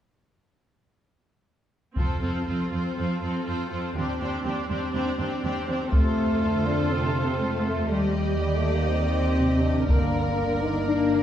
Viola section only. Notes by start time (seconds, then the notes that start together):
1.96 C4 F4
2.21 C4 F4
2.46 C4 F4
2.70 C4 F4
2.96 C4 F4
3.21 C4 F4
3.45 C4 F4
3.70 C4 F4
3.94 C4 D4
4.19 C4 D4
4.45 C4 D4
4.68 C4 D4
4.93 C4 D4
5.18 C4 D4
5.43 C4 D4
5.68 C4 D4
5.92 F4 A4
7.91 G4
9.87 A#4